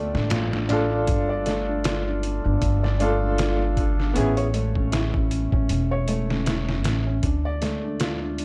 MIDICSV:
0, 0, Header, 1, 5, 480
1, 0, Start_track
1, 0, Tempo, 769231
1, 671, Time_signature, 4, 2, 24, 8
1, 5272, End_track
2, 0, Start_track
2, 0, Title_t, "Upright piano"
2, 0, Program_c, 0, 0
2, 0, Note_on_c, 0, 60, 80
2, 0, Note_on_c, 0, 62, 77
2, 0, Note_on_c, 0, 65, 76
2, 0, Note_on_c, 0, 69, 93
2, 396, Note_off_c, 0, 60, 0
2, 402, Note_off_c, 0, 62, 0
2, 408, Note_off_c, 0, 65, 0
2, 416, Note_off_c, 0, 69, 0
2, 428, Note_on_c, 0, 62, 74
2, 441, Note_on_c, 0, 65, 71
2, 453, Note_on_c, 0, 69, 87
2, 1845, Note_off_c, 0, 62, 0
2, 1851, Note_off_c, 0, 65, 0
2, 1857, Note_off_c, 0, 69, 0
2, 1869, Note_on_c, 0, 62, 79
2, 1881, Note_on_c, 0, 65, 78
2, 1893, Note_on_c, 0, 69, 90
2, 2578, Note_off_c, 0, 62, 0
2, 2580, Note_on_c, 0, 59, 81
2, 2583, Note_off_c, 0, 65, 0
2, 2589, Note_on_c, 0, 61, 75
2, 2590, Note_off_c, 0, 69, 0
2, 2596, Note_on_c, 0, 64, 75
2, 2601, Note_on_c, 0, 68, 89
2, 2763, Note_off_c, 0, 59, 0
2, 2767, Note_off_c, 0, 61, 0
2, 2770, Note_off_c, 0, 64, 0
2, 2773, Note_off_c, 0, 68, 0
2, 5272, End_track
3, 0, Start_track
3, 0, Title_t, "Felt piano"
3, 0, Program_c, 1, 0
3, 0, Control_c, 1, 64, 127
3, 0, Note_on_c, 1, 57, 101
3, 0, Note_on_c, 1, 62, 76
3, 0, Note_on_c, 1, 65, 97
3, 0, Note_on_c, 1, 74, 91
3, 72, Note_off_c, 1, 57, 0
3, 88, Note_off_c, 1, 62, 0
3, 88, Note_on_c, 1, 62, 76
3, 182, Note_off_c, 1, 62, 0
3, 192, Note_off_c, 1, 65, 0
3, 192, Note_on_c, 1, 65, 99
3, 313, Note_off_c, 1, 65, 0
3, 328, Note_on_c, 1, 62, 70
3, 422, Note_off_c, 1, 62, 0
3, 435, Note_on_c, 1, 62, 73
3, 559, Note_off_c, 1, 62, 0
3, 569, Note_on_c, 1, 62, 96
3, 662, Note_off_c, 1, 62, 0
3, 672, Note_on_c, 1, 62, 73
3, 679, Control_c, 1, 64, 0
3, 683, Note_off_c, 1, 74, 0
3, 800, Note_off_c, 1, 62, 0
3, 800, Control_c, 1, 64, 127
3, 806, Note_on_c, 1, 74, 95
3, 900, Note_off_c, 1, 74, 0
3, 913, Note_on_c, 1, 57, 95
3, 1034, Note_off_c, 1, 57, 0
3, 1047, Note_on_c, 1, 62, 68
3, 1141, Note_off_c, 1, 62, 0
3, 1154, Note_on_c, 1, 65, 99
3, 1274, Note_off_c, 1, 65, 0
3, 1285, Note_on_c, 1, 62, 73
3, 1379, Note_off_c, 1, 62, 0
3, 1389, Note_on_c, 1, 62, 71
3, 1515, Note_off_c, 1, 62, 0
3, 1524, Note_on_c, 1, 62, 99
3, 1620, Note_off_c, 1, 62, 0
3, 1634, Note_on_c, 1, 62, 76
3, 1761, Note_off_c, 1, 62, 0
3, 1769, Note_on_c, 1, 74, 94
3, 1862, Note_off_c, 1, 74, 0
3, 1874, Note_on_c, 1, 57, 97
3, 1994, Note_off_c, 1, 57, 0
3, 2010, Note_on_c, 1, 62, 74
3, 2103, Note_off_c, 1, 62, 0
3, 2116, Note_on_c, 1, 65, 95
3, 2235, Note_off_c, 1, 65, 0
3, 2251, Note_on_c, 1, 62, 74
3, 2343, Note_off_c, 1, 62, 0
3, 2356, Note_on_c, 1, 62, 70
3, 2481, Note_off_c, 1, 62, 0
3, 2491, Note_on_c, 1, 62, 89
3, 2583, Note_off_c, 1, 62, 0
3, 2596, Note_on_c, 1, 61, 68
3, 2599, Control_c, 1, 64, 0
3, 2718, Control_c, 1, 64, 127
3, 2722, Note_off_c, 1, 61, 0
3, 2728, Note_on_c, 1, 73, 97
3, 2821, Note_off_c, 1, 73, 0
3, 2831, Note_on_c, 1, 57, 93
3, 2953, Note_off_c, 1, 57, 0
3, 2969, Note_on_c, 1, 61, 71
3, 3062, Note_off_c, 1, 61, 0
3, 3071, Note_on_c, 1, 64, 101
3, 3193, Note_off_c, 1, 64, 0
3, 3207, Note_on_c, 1, 61, 70
3, 3300, Note_off_c, 1, 61, 0
3, 3309, Note_on_c, 1, 61, 74
3, 3439, Note_off_c, 1, 61, 0
3, 3448, Note_on_c, 1, 61, 101
3, 3542, Note_off_c, 1, 61, 0
3, 3557, Note_on_c, 1, 61, 71
3, 3682, Note_off_c, 1, 61, 0
3, 3690, Note_on_c, 1, 73, 97
3, 3783, Note_off_c, 1, 73, 0
3, 3796, Note_on_c, 1, 57, 97
3, 3915, Note_off_c, 1, 57, 0
3, 3928, Note_on_c, 1, 61, 77
3, 4021, Note_off_c, 1, 61, 0
3, 4031, Note_on_c, 1, 64, 95
3, 4153, Note_off_c, 1, 64, 0
3, 4169, Note_on_c, 1, 61, 69
3, 4262, Note_off_c, 1, 61, 0
3, 4276, Note_on_c, 1, 61, 69
3, 4399, Note_off_c, 1, 61, 0
3, 4408, Note_on_c, 1, 61, 89
3, 4502, Note_off_c, 1, 61, 0
3, 4515, Note_on_c, 1, 62, 74
3, 4520, Control_c, 1, 64, 0
3, 4632, Control_c, 1, 64, 127
3, 4642, Note_off_c, 1, 62, 0
3, 4650, Note_on_c, 1, 74, 92
3, 4743, Note_off_c, 1, 74, 0
3, 4754, Note_on_c, 1, 57, 95
3, 4874, Note_off_c, 1, 57, 0
3, 4890, Note_on_c, 1, 62, 70
3, 4982, Note_off_c, 1, 62, 0
3, 4993, Note_on_c, 1, 65, 98
3, 5114, Note_off_c, 1, 65, 0
3, 5128, Note_on_c, 1, 62, 66
3, 5222, Note_off_c, 1, 62, 0
3, 5233, Note_on_c, 1, 62, 73
3, 5272, Note_off_c, 1, 62, 0
3, 5272, End_track
4, 0, Start_track
4, 0, Title_t, "Upright bass"
4, 0, Program_c, 2, 32
4, 91, Note_on_c, 2, 33, 81
4, 653, Note_off_c, 2, 33, 0
4, 673, Note_on_c, 2, 31, 86
4, 1501, Note_off_c, 2, 31, 0
4, 1532, Note_on_c, 2, 31, 76
4, 1622, Note_off_c, 2, 31, 0
4, 1635, Note_on_c, 2, 31, 87
4, 2573, Note_off_c, 2, 31, 0
4, 2597, Note_on_c, 2, 33, 83
4, 3423, Note_off_c, 2, 33, 0
4, 3447, Note_on_c, 2, 33, 75
4, 3539, Note_off_c, 2, 33, 0
4, 3556, Note_on_c, 2, 28, 85
4, 4274, Note_off_c, 2, 28, 0
4, 4274, Note_on_c, 2, 33, 95
4, 4487, Note_off_c, 2, 33, 0
4, 4512, Note_on_c, 2, 38, 81
4, 5272, Note_off_c, 2, 38, 0
4, 5272, End_track
5, 0, Start_track
5, 0, Title_t, "Drums"
5, 92, Note_on_c, 9, 38, 49
5, 155, Note_off_c, 9, 38, 0
5, 189, Note_on_c, 9, 42, 85
5, 195, Note_on_c, 9, 38, 119
5, 251, Note_off_c, 9, 42, 0
5, 257, Note_off_c, 9, 38, 0
5, 333, Note_on_c, 9, 38, 56
5, 395, Note_off_c, 9, 38, 0
5, 431, Note_on_c, 9, 42, 65
5, 437, Note_on_c, 9, 38, 53
5, 494, Note_off_c, 9, 42, 0
5, 500, Note_off_c, 9, 38, 0
5, 670, Note_on_c, 9, 42, 78
5, 672, Note_on_c, 9, 36, 105
5, 733, Note_off_c, 9, 42, 0
5, 734, Note_off_c, 9, 36, 0
5, 911, Note_on_c, 9, 42, 64
5, 917, Note_on_c, 9, 38, 40
5, 973, Note_off_c, 9, 42, 0
5, 979, Note_off_c, 9, 38, 0
5, 1150, Note_on_c, 9, 42, 85
5, 1157, Note_on_c, 9, 38, 110
5, 1213, Note_off_c, 9, 42, 0
5, 1219, Note_off_c, 9, 38, 0
5, 1393, Note_on_c, 9, 42, 61
5, 1455, Note_off_c, 9, 42, 0
5, 1633, Note_on_c, 9, 36, 99
5, 1633, Note_on_c, 9, 42, 84
5, 1695, Note_off_c, 9, 36, 0
5, 1695, Note_off_c, 9, 42, 0
5, 1774, Note_on_c, 9, 38, 36
5, 1837, Note_off_c, 9, 38, 0
5, 1873, Note_on_c, 9, 42, 69
5, 1935, Note_off_c, 9, 42, 0
5, 2111, Note_on_c, 9, 42, 89
5, 2117, Note_on_c, 9, 38, 110
5, 2173, Note_off_c, 9, 42, 0
5, 2180, Note_off_c, 9, 38, 0
5, 2352, Note_on_c, 9, 36, 92
5, 2353, Note_on_c, 9, 42, 66
5, 2415, Note_off_c, 9, 36, 0
5, 2415, Note_off_c, 9, 42, 0
5, 2494, Note_on_c, 9, 38, 34
5, 2557, Note_off_c, 9, 38, 0
5, 2594, Note_on_c, 9, 42, 81
5, 2656, Note_off_c, 9, 42, 0
5, 2728, Note_on_c, 9, 42, 40
5, 2790, Note_off_c, 9, 42, 0
5, 2832, Note_on_c, 9, 42, 65
5, 2895, Note_off_c, 9, 42, 0
5, 2967, Note_on_c, 9, 36, 81
5, 3029, Note_off_c, 9, 36, 0
5, 3072, Note_on_c, 9, 42, 85
5, 3079, Note_on_c, 9, 38, 111
5, 3135, Note_off_c, 9, 42, 0
5, 3141, Note_off_c, 9, 38, 0
5, 3207, Note_on_c, 9, 36, 94
5, 3270, Note_off_c, 9, 36, 0
5, 3314, Note_on_c, 9, 42, 66
5, 3376, Note_off_c, 9, 42, 0
5, 3447, Note_on_c, 9, 36, 84
5, 3509, Note_off_c, 9, 36, 0
5, 3552, Note_on_c, 9, 42, 81
5, 3615, Note_off_c, 9, 42, 0
5, 3792, Note_on_c, 9, 42, 64
5, 3854, Note_off_c, 9, 42, 0
5, 3934, Note_on_c, 9, 38, 48
5, 3996, Note_off_c, 9, 38, 0
5, 4033, Note_on_c, 9, 42, 74
5, 4039, Note_on_c, 9, 38, 98
5, 4096, Note_off_c, 9, 42, 0
5, 4102, Note_off_c, 9, 38, 0
5, 4172, Note_on_c, 9, 38, 53
5, 4234, Note_off_c, 9, 38, 0
5, 4270, Note_on_c, 9, 42, 77
5, 4277, Note_on_c, 9, 38, 108
5, 4333, Note_off_c, 9, 42, 0
5, 4339, Note_off_c, 9, 38, 0
5, 4511, Note_on_c, 9, 42, 84
5, 4512, Note_on_c, 9, 36, 102
5, 4573, Note_off_c, 9, 42, 0
5, 4574, Note_off_c, 9, 36, 0
5, 4753, Note_on_c, 9, 42, 66
5, 4759, Note_on_c, 9, 38, 38
5, 4815, Note_off_c, 9, 42, 0
5, 4822, Note_off_c, 9, 38, 0
5, 4990, Note_on_c, 9, 42, 84
5, 4997, Note_on_c, 9, 38, 114
5, 5053, Note_off_c, 9, 42, 0
5, 5059, Note_off_c, 9, 38, 0
5, 5232, Note_on_c, 9, 42, 61
5, 5272, Note_off_c, 9, 42, 0
5, 5272, End_track
0, 0, End_of_file